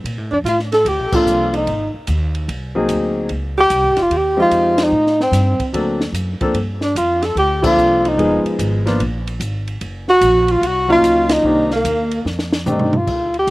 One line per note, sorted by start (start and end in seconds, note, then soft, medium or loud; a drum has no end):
0.04 0.18 A#2 medium
0.04 ride medium
0.18 0.31 A2 medium
0.31 0.43 F2 medium
0.31 0.37 D4 medium
0.31 0.39 D4 medium
0.44 0.84 A2 medium
0.44 0.57 F4 medium
0.44 hi-hat pedal medium
0.44 ride medium
0.48 0.59 F4 medium
0.59 snare soft
0.72 0.89 A4 medium
0.72 0.90 A4 medium
0.72 snare soft
0.72 ride soft
0.85 0.99 D2 medium
0.85 1.16 G4 medium
0.85 1.17 G4 medium
0.85 ride medium
0.99 1.12 A#1 soft
1.12 1.25 A1 medium
1.12 1.65 F3 medium
1.12 1.64 A#3 medium
1.12 1.65 C4 medium
1.12 1.65 D4 medium
1.12 1.53 F4 medium
1.12 1.54 F4 loud
1.12 1.65 A4 medium
1.12 kick medium
1.12 crash medium
1.26 1.66 C2 medium
1.26 hi-hat pedal medium
1.53 1.91 D#4 medium
1.53 1.93 D#4 medium
1.53 ride soft
1.67 1.91 G#1 medium
1.67 ride medium
1.94 muted upright bass stroke soft
2.07 2.47 D#2 loud
2.07 hi-hat pedal medium
2.07 ride medium
2.35 ride soft
2.48 2.88 C2 medium
2.48 ride medium
2.75 3.27 F#3 medium
2.75 3.27 A#3 medium
2.75 3.27 C4 medium
2.75 3.28 D#4 medium
2.75 3.28 G#4 medium
2.89 3.29 D2 medium
2.89 hi-hat pedal soft
2.89 ride medium
3.29 3.70 C#2 medium
3.29 ride soft
3.58 3.99 G4 loud
3.58 4.04 G4 loud
3.70 3.86 C2 medium
3.70 hi-hat pedal medium
3.70 ride medium
3.84 3.97 G#1 medium
3.97 4.09 F1 medium
3.97 4.14 F4 medium
3.97 snare soft
3.97 ride soft
4.02 4.19 F4 loud
4.10 4.50 D#2 medium
4.10 4.38 G4 medium
4.10 ride medium
4.17 4.41 G4 medium
4.37 4.89 F3 medium
4.37 4.90 G#3 medium
4.37 4.90 C4 medium
4.37 4.90 D#4 medium
4.37 4.82 F4 medium
4.37 4.90 G4 medium
4.42 4.85 F4 loud
4.51 4.91 F2 medium
4.51 hi-hat pedal soft
4.51 ride medium
4.78 5.20 D#4 medium
4.78 snare medium
4.78 ride medium
4.84 5.22 D#4 loud
4.92 5.31 A2 medium
5.07 snare soft
5.20 5.71 C4 medium
5.20 5.72 C4 medium
5.20 snare soft
5.32 5.57 G2 medium
5.32 snare soft
5.32 hi-hat pedal medium
5.32 ride medium
5.59 muted upright bass stroke soft
5.59 kick medium
5.59 ride soft
5.73 6.12 D2 medium
5.73 5.98 F#3 medium
5.73 5.98 A#3 medium
5.73 5.98 C4 medium
5.73 5.98 D4 medium
5.73 5.98 A4 medium
5.73 ride medium
6.01 snare medium
6.13 6.38 F#2 medium
6.13 hi-hat pedal soft
6.13 ride medium
6.41 6.54 F3 medium
6.41 6.54 A#3 medium
6.41 6.54 C4 medium
6.41 6.54 D4 medium
6.41 6.54 A4 medium
6.41 muted upright bass stroke soft
6.41 kick medium
6.41 ride soft
6.54 6.94 G2 medium
6.54 ride medium
6.81 6.96 D4 medium
6.81 snare soft
6.95 7.35 F2 medium
6.95 7.24 F4 medium
6.95 7.27 F4 medium
6.95 hi-hat pedal medium
6.95 ride medium
7.22 7.37 A4 medium
7.22 7.38 A4 medium
7.22 snare soft
7.22 ride soft
7.35 7.76 D2 medium
7.35 7.62 G4 medium
7.35 7.63 G4 medium
7.35 ride medium
7.62 8.15 F3 medium
7.62 8.15 A#3 medium
7.62 8.15 C4 medium
7.62 8.15 D4 medium
7.62 8.07 F4 medium
7.62 8.10 F4 loud
7.62 8.16 A4 medium
7.62 kick medium
7.62 crash medium
7.76 8.16 C2 medium
7.76 hi-hat pedal soft
8.05 8.45 D#4 medium
8.05 8.47 D#4 medium
8.05 ride soft
8.17 8.42 F1 medium
8.17 8.80 F3 medium
8.17 8.80 G#3 medium
8.17 8.80 B3 medium
8.17 8.80 D#4 medium
8.17 8.80 G#4 medium
8.17 ride soft
8.44 muted upright bass stroke soft
8.44 ride soft
8.59 8.98 G#1 loud
8.59 hi-hat pedal medium
8.59 ride medium
8.86 8.98 F3 medium
8.86 8.98 A#3 medium
8.86 8.99 B3 medium
8.86 8.99 D4 medium
8.86 8.99 F4 medium
8.86 snare soft
8.86 ride soft
8.99 9.39 A#1 medium
8.99 ride medium
9.27 ride medium
9.40 9.80 G#1 medium
9.40 hi-hat pedal soft
9.40 ride medium
9.68 ride soft
9.81 10.21 F#1 medium
9.81 ride medium
10.08 10.53 F#4 loud
10.08 snare soft
10.21 10.61 A#1 loud
10.21 hi-hat pedal medium
10.21 ride medium
10.48 10.68 F4 medium
10.48 10.64 F4 medium
10.48 ride soft
10.61 11.01 C2 medium
10.61 10.89 F#4 medium
10.61 ride medium
10.67 10.91 F#4 loud
10.88 11.41 F#3 medium
10.88 11.41 A#3 medium
10.88 11.41 C#4 medium
10.88 11.41 D#4 medium
10.88 11.41 F4 medium
10.88 11.32 F4 medium
10.92 11.35 F4 loud
11.02 11.42 C#2 medium
11.02 hi-hat pedal medium
11.02 ride medium
11.29 11.71 D#4 medium
11.29 11.72 D#4 loud
11.29 snare medium
11.29 ride medium
11.43 11.83 C2 medium
11.43 11.68 D#3 medium
11.43 11.68 A#3 medium
11.43 11.69 C4 medium
11.43 11.69 D4 medium
11.43 11.69 G4 medium
11.71 12.23 A#3 medium
11.71 snare soft
11.75 12.24 A#3 medium
11.84 12.24 D#2 medium
11.84 hi-hat pedal medium
11.84 ride medium
12.11 ride soft
12.25 12.65 F2 medium
12.25 snare soft
12.39 snare medium
12.52 snare medium
12.66 13.06 G2 medium
12.66 12.90 D#3 medium
12.66 12.90 A3 medium
12.66 12.90 C4 medium
12.66 12.90 D4 medium
12.66 12.91 G4 medium
12.66 floor tom medium
12.66 hi-hat pedal medium
12.71 12.99 D#4 medium
12.79 floor tom medium
12.93 floor tom medium
12.98 13.36 F4 loud
13.07 13.46 D2 medium
13.07 kick medium
13.07 crash medium
13.34 ride soft
13.39 13.50 G4 medium
13.47 13.50 A#1 loud